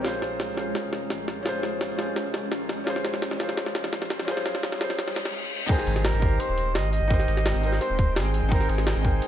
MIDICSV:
0, 0, Header, 1, 9, 480
1, 0, Start_track
1, 0, Tempo, 352941
1, 63, Time_signature, 4, 2, 24, 8
1, 12617, End_track
2, 0, Start_track
2, 0, Title_t, "Flugelhorn"
2, 0, Program_c, 0, 56
2, 7742, Note_on_c, 0, 68, 104
2, 8221, Note_on_c, 0, 70, 102
2, 8242, Note_off_c, 0, 68, 0
2, 8699, Note_on_c, 0, 72, 108
2, 8719, Note_off_c, 0, 70, 0
2, 9179, Note_on_c, 0, 75, 107
2, 9199, Note_off_c, 0, 72, 0
2, 9409, Note_off_c, 0, 75, 0
2, 9417, Note_on_c, 0, 75, 122
2, 10566, Note_off_c, 0, 75, 0
2, 10618, Note_on_c, 0, 72, 108
2, 11100, Note_on_c, 0, 68, 95
2, 11121, Note_off_c, 0, 72, 0
2, 11579, Note_on_c, 0, 70, 106
2, 11600, Note_off_c, 0, 68, 0
2, 11821, Note_on_c, 0, 68, 95
2, 11841, Note_off_c, 0, 70, 0
2, 12617, Note_off_c, 0, 68, 0
2, 12617, End_track
3, 0, Start_track
3, 0, Title_t, "Felt piano"
3, 0, Program_c, 1, 0
3, 0, Control_c, 1, 64, 127
3, 23, Note_on_c, 1, 61, 93
3, 50, Note_on_c, 1, 65, 88
3, 77, Note_on_c, 1, 68, 88
3, 80, Control_c, 1, 64, 0
3, 105, Note_on_c, 1, 72, 108
3, 324, Control_c, 1, 64, 127
3, 721, Note_off_c, 1, 61, 0
3, 741, Note_on_c, 1, 61, 76
3, 748, Note_off_c, 1, 65, 0
3, 762, Note_off_c, 1, 68, 0
3, 768, Note_on_c, 1, 65, 70
3, 776, Note_off_c, 1, 72, 0
3, 796, Note_on_c, 1, 68, 69
3, 824, Note_on_c, 1, 72, 83
3, 1920, Note_off_c, 1, 61, 0
3, 1941, Note_on_c, 1, 61, 97
3, 1947, Note_off_c, 1, 65, 0
3, 1961, Note_off_c, 1, 68, 0
3, 1968, Note_on_c, 1, 65, 87
3, 1975, Note_off_c, 1, 72, 0
3, 1994, Note_on_c, 1, 68, 88
3, 2022, Note_on_c, 1, 72, 110
3, 2641, Note_off_c, 1, 61, 0
3, 2661, Note_on_c, 1, 61, 76
3, 2667, Note_off_c, 1, 65, 0
3, 2680, Note_off_c, 1, 68, 0
3, 2689, Note_on_c, 1, 65, 69
3, 2694, Note_off_c, 1, 72, 0
3, 2716, Note_on_c, 1, 68, 69
3, 2744, Note_on_c, 1, 72, 81
3, 3843, Note_off_c, 1, 61, 0
3, 3863, Note_on_c, 1, 61, 98
3, 3867, Note_off_c, 1, 65, 0
3, 3881, Note_off_c, 1, 68, 0
3, 3890, Note_on_c, 1, 65, 91
3, 3895, Note_off_c, 1, 72, 0
3, 3917, Note_on_c, 1, 68, 92
3, 3945, Note_on_c, 1, 72, 111
3, 4563, Note_off_c, 1, 61, 0
3, 4583, Note_on_c, 1, 61, 76
3, 4588, Note_off_c, 1, 65, 0
3, 4602, Note_off_c, 1, 68, 0
3, 4611, Note_on_c, 1, 65, 70
3, 4616, Note_off_c, 1, 72, 0
3, 4639, Note_on_c, 1, 68, 68
3, 4666, Note_on_c, 1, 72, 83
3, 5761, Note_off_c, 1, 61, 0
3, 5781, Note_on_c, 1, 61, 101
3, 5788, Note_off_c, 1, 65, 0
3, 5803, Note_off_c, 1, 68, 0
3, 5809, Note_on_c, 1, 65, 89
3, 5816, Note_off_c, 1, 72, 0
3, 5836, Note_on_c, 1, 68, 89
3, 5864, Note_on_c, 1, 72, 110
3, 6480, Note_off_c, 1, 61, 0
3, 6501, Note_on_c, 1, 61, 77
3, 6507, Note_off_c, 1, 65, 0
3, 6521, Note_off_c, 1, 68, 0
3, 6527, Note_on_c, 1, 65, 71
3, 6535, Note_off_c, 1, 72, 0
3, 6555, Note_on_c, 1, 68, 72
3, 6582, Note_on_c, 1, 72, 87
3, 7242, Note_off_c, 1, 61, 0
3, 7255, Note_off_c, 1, 65, 0
3, 7269, Note_off_c, 1, 68, 0
3, 7283, Note_off_c, 1, 72, 0
3, 7701, Note_on_c, 1, 63, 98
3, 7728, Note_on_c, 1, 79, 91
3, 7756, Note_on_c, 1, 70, 89
3, 7760, Control_c, 1, 64, 0
3, 7784, Note_on_c, 1, 72, 107
3, 8034, Control_c, 1, 64, 127
3, 8403, Note_off_c, 1, 63, 0
3, 8424, Note_on_c, 1, 63, 73
3, 8427, Note_off_c, 1, 79, 0
3, 8441, Note_off_c, 1, 70, 0
3, 8451, Note_on_c, 1, 67, 68
3, 8455, Note_off_c, 1, 72, 0
3, 8479, Note_on_c, 1, 70, 71
3, 8505, Note_on_c, 1, 72, 86
3, 9604, Note_off_c, 1, 63, 0
3, 9624, Note_on_c, 1, 63, 98
3, 9629, Note_off_c, 1, 67, 0
3, 9643, Note_off_c, 1, 70, 0
3, 9651, Note_on_c, 1, 67, 93
3, 9656, Note_off_c, 1, 72, 0
3, 9678, Note_on_c, 1, 70, 91
3, 9705, Note_on_c, 1, 72, 110
3, 10323, Note_off_c, 1, 63, 0
3, 10344, Note_on_c, 1, 63, 74
3, 10349, Note_off_c, 1, 67, 0
3, 10362, Note_off_c, 1, 70, 0
3, 10371, Note_on_c, 1, 79, 72
3, 10376, Note_off_c, 1, 72, 0
3, 10399, Note_on_c, 1, 70, 69
3, 10426, Note_on_c, 1, 72, 86
3, 11522, Note_off_c, 1, 63, 0
3, 11542, Note_on_c, 1, 63, 101
3, 11549, Note_off_c, 1, 79, 0
3, 11562, Note_off_c, 1, 70, 0
3, 11570, Note_on_c, 1, 79, 88
3, 11576, Note_off_c, 1, 72, 0
3, 11597, Note_on_c, 1, 70, 88
3, 11625, Note_on_c, 1, 72, 113
3, 12242, Note_off_c, 1, 63, 0
3, 12263, Note_on_c, 1, 63, 77
3, 12268, Note_off_c, 1, 79, 0
3, 12282, Note_off_c, 1, 70, 0
3, 12290, Note_on_c, 1, 79, 69
3, 12295, Note_off_c, 1, 72, 0
3, 12318, Note_on_c, 1, 70, 73
3, 12345, Note_on_c, 1, 72, 84
3, 12617, Note_off_c, 1, 63, 0
3, 12617, Note_off_c, 1, 70, 0
3, 12617, Note_off_c, 1, 72, 0
3, 12617, Note_off_c, 1, 79, 0
3, 12617, End_track
4, 0, Start_track
4, 0, Title_t, "Ambient pad"
4, 0, Program_c, 2, 92
4, 0, Note_on_c, 2, 70, 90
4, 61, Note_on_c, 2, 56, 84
4, 61, Note_on_c, 2, 61, 79
4, 3848, Note_off_c, 2, 70, 0
4, 3900, Note_on_c, 2, 72, 92
4, 7207, Note_off_c, 2, 56, 0
4, 7207, Note_off_c, 2, 61, 0
4, 7228, Note_off_c, 2, 72, 0
4, 7742, Note_on_c, 2, 56, 88
4, 7743, Note_on_c, 2, 79, 76
4, 7744, Note_on_c, 2, 60, 79
4, 7744, Note_on_c, 2, 70, 94
4, 12617, Note_off_c, 2, 56, 0
4, 12617, Note_off_c, 2, 60, 0
4, 12617, Note_off_c, 2, 70, 0
4, 12617, Note_off_c, 2, 79, 0
4, 12617, End_track
5, 0, Start_track
5, 0, Title_t, "Sub bass"
5, 0, Program_c, 3, 38
5, 0, Note_on_c, 3, 34, 101
5, 284, Note_off_c, 3, 34, 0
5, 302, Note_on_c, 3, 34, 98
5, 646, Note_off_c, 3, 34, 0
5, 665, Note_on_c, 3, 34, 78
5, 1004, Note_off_c, 3, 34, 0
5, 1145, Note_on_c, 3, 29, 82
5, 1502, Note_on_c, 3, 34, 84
5, 1523, Note_off_c, 3, 29, 0
5, 1846, Note_off_c, 3, 34, 0
5, 1865, Note_on_c, 3, 34, 102
5, 2204, Note_off_c, 3, 34, 0
5, 2222, Note_on_c, 3, 34, 97
5, 2566, Note_off_c, 3, 34, 0
5, 2584, Note_on_c, 3, 34, 80
5, 2923, Note_off_c, 3, 34, 0
5, 3065, Note_on_c, 3, 29, 80
5, 3421, Note_on_c, 3, 34, 86
5, 3441, Note_off_c, 3, 29, 0
5, 3765, Note_off_c, 3, 34, 0
5, 3785, Note_on_c, 3, 34, 102
5, 4124, Note_off_c, 3, 34, 0
5, 4143, Note_on_c, 3, 34, 94
5, 4486, Note_off_c, 3, 34, 0
5, 4506, Note_on_c, 3, 34, 77
5, 4844, Note_off_c, 3, 34, 0
5, 4987, Note_on_c, 3, 29, 85
5, 5344, Note_on_c, 3, 34, 84
5, 5364, Note_off_c, 3, 29, 0
5, 5687, Note_off_c, 3, 34, 0
5, 5706, Note_on_c, 3, 34, 100
5, 6044, Note_off_c, 3, 34, 0
5, 6062, Note_on_c, 3, 34, 96
5, 6406, Note_off_c, 3, 34, 0
5, 6425, Note_on_c, 3, 34, 80
5, 6764, Note_off_c, 3, 34, 0
5, 6905, Note_on_c, 3, 34, 94
5, 7243, Note_off_c, 3, 34, 0
5, 7983, Note_on_c, 3, 32, 98
5, 8326, Note_off_c, 3, 32, 0
5, 8346, Note_on_c, 3, 32, 81
5, 8684, Note_off_c, 3, 32, 0
5, 8826, Note_on_c, 3, 27, 81
5, 9185, Note_on_c, 3, 32, 84
5, 9205, Note_off_c, 3, 27, 0
5, 9527, Note_off_c, 3, 32, 0
5, 9545, Note_on_c, 3, 32, 99
5, 9884, Note_off_c, 3, 32, 0
5, 9904, Note_on_c, 3, 32, 99
5, 10247, Note_off_c, 3, 32, 0
5, 10268, Note_on_c, 3, 32, 77
5, 10605, Note_off_c, 3, 32, 0
5, 10745, Note_on_c, 3, 27, 80
5, 11103, Note_on_c, 3, 32, 86
5, 11123, Note_off_c, 3, 27, 0
5, 11446, Note_off_c, 3, 32, 0
5, 11464, Note_on_c, 3, 32, 101
5, 11803, Note_off_c, 3, 32, 0
5, 11822, Note_on_c, 3, 32, 94
5, 12166, Note_off_c, 3, 32, 0
5, 12185, Note_on_c, 3, 32, 80
5, 12524, Note_off_c, 3, 32, 0
5, 12617, End_track
6, 0, Start_track
6, 0, Title_t, "Impact"
6, 0, Program_c, 4, 103
6, 7743, Note_on_c, 4, 60, 75
6, 9663, Note_off_c, 4, 60, 0
6, 12617, End_track
7, 0, Start_track
7, 0, Title_t, "Reverse cymbal"
7, 0, Program_c, 5, 119
7, 6782, Note_on_c, 5, 60, 75
7, 7742, Note_off_c, 5, 60, 0
7, 12617, End_track
8, 0, Start_track
8, 0, Title_t, "Riser"
8, 0, Program_c, 6, 103
8, 62, Note_on_c, 6, 60, 79
8, 7262, Note_off_c, 6, 60, 0
8, 12617, End_track
9, 0, Start_track
9, 0, Title_t, "Drums"
9, 62, Note_on_c, 9, 38, 73
9, 62, Note_on_c, 9, 42, 89
9, 198, Note_off_c, 9, 38, 0
9, 198, Note_off_c, 9, 42, 0
9, 302, Note_on_c, 9, 38, 72
9, 302, Note_on_c, 9, 42, 60
9, 438, Note_off_c, 9, 38, 0
9, 438, Note_off_c, 9, 42, 0
9, 541, Note_on_c, 9, 38, 75
9, 541, Note_on_c, 9, 42, 88
9, 677, Note_off_c, 9, 38, 0
9, 677, Note_off_c, 9, 42, 0
9, 782, Note_on_c, 9, 38, 74
9, 782, Note_on_c, 9, 42, 63
9, 918, Note_off_c, 9, 38, 0
9, 918, Note_off_c, 9, 42, 0
9, 1021, Note_on_c, 9, 38, 81
9, 1021, Note_on_c, 9, 42, 91
9, 1157, Note_off_c, 9, 38, 0
9, 1157, Note_off_c, 9, 42, 0
9, 1261, Note_on_c, 9, 38, 79
9, 1261, Note_on_c, 9, 42, 62
9, 1397, Note_off_c, 9, 38, 0
9, 1397, Note_off_c, 9, 42, 0
9, 1500, Note_on_c, 9, 38, 78
9, 1500, Note_on_c, 9, 42, 88
9, 1636, Note_off_c, 9, 38, 0
9, 1636, Note_off_c, 9, 42, 0
9, 1741, Note_on_c, 9, 38, 82
9, 1741, Note_on_c, 9, 42, 64
9, 1877, Note_off_c, 9, 38, 0
9, 1877, Note_off_c, 9, 42, 0
9, 1981, Note_on_c, 9, 38, 83
9, 1981, Note_on_c, 9, 42, 89
9, 2117, Note_off_c, 9, 38, 0
9, 2117, Note_off_c, 9, 42, 0
9, 2221, Note_on_c, 9, 38, 83
9, 2221, Note_on_c, 9, 42, 64
9, 2357, Note_off_c, 9, 38, 0
9, 2357, Note_off_c, 9, 42, 0
9, 2461, Note_on_c, 9, 38, 84
9, 2461, Note_on_c, 9, 42, 89
9, 2597, Note_off_c, 9, 38, 0
9, 2597, Note_off_c, 9, 42, 0
9, 2701, Note_on_c, 9, 38, 87
9, 2701, Note_on_c, 9, 42, 61
9, 2837, Note_off_c, 9, 38, 0
9, 2837, Note_off_c, 9, 42, 0
9, 2942, Note_on_c, 9, 38, 88
9, 2942, Note_on_c, 9, 42, 92
9, 3078, Note_off_c, 9, 38, 0
9, 3078, Note_off_c, 9, 42, 0
9, 3182, Note_on_c, 9, 38, 87
9, 3182, Note_on_c, 9, 42, 64
9, 3318, Note_off_c, 9, 38, 0
9, 3318, Note_off_c, 9, 42, 0
9, 3422, Note_on_c, 9, 38, 89
9, 3422, Note_on_c, 9, 42, 88
9, 3558, Note_off_c, 9, 38, 0
9, 3558, Note_off_c, 9, 42, 0
9, 3662, Note_on_c, 9, 38, 92
9, 3662, Note_on_c, 9, 42, 66
9, 3798, Note_off_c, 9, 38, 0
9, 3798, Note_off_c, 9, 42, 0
9, 3903, Note_on_c, 9, 38, 94
9, 3903, Note_on_c, 9, 42, 96
9, 4027, Note_off_c, 9, 38, 0
9, 4027, Note_on_c, 9, 38, 77
9, 4039, Note_off_c, 9, 42, 0
9, 4143, Note_off_c, 9, 38, 0
9, 4143, Note_on_c, 9, 38, 92
9, 4143, Note_on_c, 9, 42, 67
9, 4266, Note_off_c, 9, 38, 0
9, 4266, Note_on_c, 9, 38, 81
9, 4279, Note_off_c, 9, 42, 0
9, 4382, Note_off_c, 9, 38, 0
9, 4382, Note_on_c, 9, 38, 92
9, 4382, Note_on_c, 9, 42, 95
9, 4505, Note_off_c, 9, 38, 0
9, 4505, Note_on_c, 9, 38, 83
9, 4518, Note_off_c, 9, 42, 0
9, 4623, Note_off_c, 9, 38, 0
9, 4623, Note_on_c, 9, 38, 94
9, 4623, Note_on_c, 9, 42, 68
9, 4745, Note_off_c, 9, 38, 0
9, 4745, Note_on_c, 9, 38, 87
9, 4759, Note_off_c, 9, 42, 0
9, 4862, Note_off_c, 9, 38, 0
9, 4862, Note_on_c, 9, 38, 102
9, 4862, Note_on_c, 9, 42, 100
9, 4983, Note_off_c, 9, 38, 0
9, 4983, Note_on_c, 9, 38, 81
9, 4998, Note_off_c, 9, 42, 0
9, 5100, Note_off_c, 9, 38, 0
9, 5100, Note_on_c, 9, 38, 96
9, 5100, Note_on_c, 9, 42, 66
9, 5223, Note_off_c, 9, 38, 0
9, 5223, Note_on_c, 9, 38, 88
9, 5236, Note_off_c, 9, 42, 0
9, 5341, Note_off_c, 9, 38, 0
9, 5341, Note_on_c, 9, 38, 98
9, 5341, Note_on_c, 9, 42, 95
9, 5464, Note_off_c, 9, 38, 0
9, 5464, Note_on_c, 9, 38, 86
9, 5477, Note_off_c, 9, 42, 0
9, 5581, Note_off_c, 9, 38, 0
9, 5581, Note_on_c, 9, 38, 98
9, 5581, Note_on_c, 9, 42, 71
9, 5705, Note_off_c, 9, 38, 0
9, 5705, Note_on_c, 9, 38, 86
9, 5717, Note_off_c, 9, 42, 0
9, 5821, Note_off_c, 9, 38, 0
9, 5821, Note_on_c, 9, 38, 102
9, 5821, Note_on_c, 9, 42, 96
9, 5944, Note_off_c, 9, 38, 0
9, 5944, Note_on_c, 9, 38, 88
9, 5957, Note_off_c, 9, 42, 0
9, 6061, Note_off_c, 9, 38, 0
9, 6061, Note_on_c, 9, 38, 100
9, 6061, Note_on_c, 9, 42, 70
9, 6184, Note_off_c, 9, 38, 0
9, 6184, Note_on_c, 9, 38, 88
9, 6197, Note_off_c, 9, 42, 0
9, 6302, Note_off_c, 9, 38, 0
9, 6302, Note_on_c, 9, 38, 107
9, 6302, Note_on_c, 9, 42, 99
9, 6424, Note_off_c, 9, 38, 0
9, 6424, Note_on_c, 9, 38, 91
9, 6438, Note_off_c, 9, 42, 0
9, 6540, Note_off_c, 9, 38, 0
9, 6540, Note_on_c, 9, 38, 108
9, 6540, Note_on_c, 9, 42, 72
9, 6664, Note_off_c, 9, 38, 0
9, 6664, Note_on_c, 9, 38, 94
9, 6676, Note_off_c, 9, 42, 0
9, 6781, Note_off_c, 9, 38, 0
9, 6781, Note_on_c, 9, 38, 107
9, 6781, Note_on_c, 9, 42, 103
9, 6903, Note_off_c, 9, 38, 0
9, 6903, Note_on_c, 9, 38, 90
9, 6917, Note_off_c, 9, 42, 0
9, 7022, Note_off_c, 9, 38, 0
9, 7022, Note_on_c, 9, 38, 105
9, 7022, Note_on_c, 9, 42, 71
9, 7146, Note_off_c, 9, 38, 0
9, 7146, Note_on_c, 9, 38, 99
9, 7158, Note_off_c, 9, 42, 0
9, 7282, Note_off_c, 9, 38, 0
9, 7742, Note_on_c, 9, 36, 120
9, 7742, Note_on_c, 9, 42, 96
9, 7742, Note_on_c, 9, 49, 104
9, 7866, Note_on_c, 9, 40, 36
9, 7878, Note_off_c, 9, 36, 0
9, 7878, Note_off_c, 9, 42, 0
9, 7878, Note_off_c, 9, 49, 0
9, 7983, Note_on_c, 9, 42, 70
9, 8002, Note_off_c, 9, 40, 0
9, 8106, Note_on_c, 9, 40, 47
9, 8119, Note_off_c, 9, 42, 0
9, 8223, Note_on_c, 9, 38, 119
9, 8223, Note_on_c, 9, 42, 98
9, 8242, Note_off_c, 9, 40, 0
9, 8359, Note_off_c, 9, 38, 0
9, 8359, Note_off_c, 9, 42, 0
9, 8463, Note_on_c, 9, 36, 106
9, 8463, Note_on_c, 9, 46, 76
9, 8599, Note_off_c, 9, 36, 0
9, 8599, Note_off_c, 9, 46, 0
9, 8703, Note_on_c, 9, 42, 102
9, 8839, Note_off_c, 9, 42, 0
9, 8943, Note_on_c, 9, 42, 69
9, 9079, Note_off_c, 9, 42, 0
9, 9182, Note_on_c, 9, 38, 113
9, 9182, Note_on_c, 9, 42, 95
9, 9318, Note_off_c, 9, 38, 0
9, 9318, Note_off_c, 9, 42, 0
9, 9423, Note_on_c, 9, 46, 79
9, 9559, Note_off_c, 9, 46, 0
9, 9663, Note_on_c, 9, 36, 120
9, 9663, Note_on_c, 9, 42, 96
9, 9786, Note_on_c, 9, 40, 38
9, 9799, Note_off_c, 9, 36, 0
9, 9799, Note_off_c, 9, 42, 0
9, 9903, Note_on_c, 9, 42, 68
9, 9922, Note_off_c, 9, 40, 0
9, 10026, Note_on_c, 9, 40, 49
9, 10039, Note_off_c, 9, 42, 0
9, 10142, Note_on_c, 9, 38, 123
9, 10142, Note_on_c, 9, 42, 93
9, 10162, Note_off_c, 9, 40, 0
9, 10278, Note_off_c, 9, 38, 0
9, 10278, Note_off_c, 9, 42, 0
9, 10382, Note_on_c, 9, 46, 77
9, 10506, Note_on_c, 9, 38, 38
9, 10518, Note_off_c, 9, 46, 0
9, 10623, Note_on_c, 9, 40, 37
9, 10623, Note_on_c, 9, 42, 100
9, 10642, Note_off_c, 9, 38, 0
9, 10759, Note_off_c, 9, 40, 0
9, 10759, Note_off_c, 9, 42, 0
9, 10863, Note_on_c, 9, 36, 108
9, 10863, Note_on_c, 9, 42, 68
9, 10999, Note_off_c, 9, 36, 0
9, 10999, Note_off_c, 9, 42, 0
9, 11103, Note_on_c, 9, 38, 124
9, 11103, Note_on_c, 9, 42, 93
9, 11239, Note_off_c, 9, 38, 0
9, 11239, Note_off_c, 9, 42, 0
9, 11343, Note_on_c, 9, 46, 76
9, 11479, Note_off_c, 9, 46, 0
9, 11582, Note_on_c, 9, 42, 89
9, 11583, Note_on_c, 9, 36, 123
9, 11704, Note_on_c, 9, 40, 37
9, 11718, Note_off_c, 9, 42, 0
9, 11719, Note_off_c, 9, 36, 0
9, 11822, Note_on_c, 9, 42, 66
9, 11840, Note_off_c, 9, 40, 0
9, 11944, Note_on_c, 9, 40, 48
9, 11958, Note_off_c, 9, 42, 0
9, 12060, Note_on_c, 9, 38, 122
9, 12060, Note_on_c, 9, 42, 90
9, 12080, Note_off_c, 9, 40, 0
9, 12196, Note_off_c, 9, 38, 0
9, 12196, Note_off_c, 9, 42, 0
9, 12301, Note_on_c, 9, 46, 75
9, 12303, Note_on_c, 9, 36, 111
9, 12437, Note_off_c, 9, 46, 0
9, 12439, Note_off_c, 9, 36, 0
9, 12541, Note_on_c, 9, 42, 93
9, 12617, Note_off_c, 9, 42, 0
9, 12617, End_track
0, 0, End_of_file